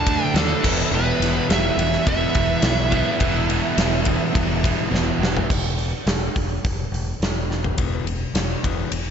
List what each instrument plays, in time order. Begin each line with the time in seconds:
Already playing: fingered electric bass D2, overdriven electric guitar D3 F#3 A3 D4, analog synth pad D4 B4 E5, lead electric guitar A5
0.06 overdriven electric guitar D3 A3 D4, kick, ride
0.24 lead electric guitar G5
0.34 fingered electric bass D#2, overdriven electric guitar D3 A3 D4, lead electric guitar A4, snare, ride
0.63 fingered electric bass E1, overdriven electric guitar E2 B2 E3 G3 B3 E4, analog synth pad E4 F#5, kick, crash
0.91 fingered electric bass E1, overdriven electric guitar E2 B2 E3, lead electric guitar B4
1.20 fingered electric bass E1, overdriven electric guitar E2 B2 E3, snare, ride
1.49 fingered electric bass E1, overdriven electric guitar E2 B2 E3, snare, ride
1.53 lead electric guitar E5
1.77 fingered electric bass E1, overdriven electric guitar E2 B2 E3, ride
1.93 snare
2.06 fingered electric bass E1, overdriven electric guitar E2 B2 E3, lead electric guitar E5, kick, ride
2.34 fingered electric bass E1, overdriven electric guitar E2 B2 E3, kick, ride
2.62 fingered electric bass B1, overdriven electric guitar E2 B2 E3, snare, ride
2.91 overdriven electric guitar E2 B2 E3 G3 B3 E4, analog synth pad A4, kick, ride
3.20 fingered electric bass E1, overdriven electric guitar E2 B2 E3, kick, ride
3.48 overdriven electric guitar E2 B2 E3, ride
3.76 fingered electric bass E1, overdriven electric guitar E2 B2 E3, snare, ride
4.05 overdriven electric guitar E2 B2 E3, kick, ride
4.33 fingered electric bass E1, overdriven electric guitar E2 B2 E3, kick, ride
4.63 overdriven electric guitar E2 B2 E3, kick, ride
4.91 fingered electric bass E1, overdriven electric guitar E2 B2 E3, snare
5.19 fingered electric bass E1, overdriven electric guitar E2 B2 E3
5.23 snare
5.37 floor tom
5.50 fingered electric bass E1, kick, crash
5.79 open hi-hat
6.06 fingered electric bass E1, snare, open hi-hat
6.36 fingered electric bass E1, kick, open hi-hat
6.64 fingered electric bass E1, kick, open hi-hat
6.92 fingered electric bass E1, open hi-hat
7.20 fingered electric bass E1, snare, open hi-hat
7.51 snare
7.64 floor tom
7.78 fingered electric bass E1, overdriven electric guitar E2 B2 E3, kick, ride
8.04 fingered electric bass E1, overdriven electric guitar E2 B2, ride
8.34 fingered electric bass E1, overdriven electric guitar E2 B2, snare, ride
8.63 fingered electric bass E1, overdriven electric guitar E2 B2 E3, kick, ride
8.91 fingered electric bass E1, overdriven electric guitar E2 B2, ride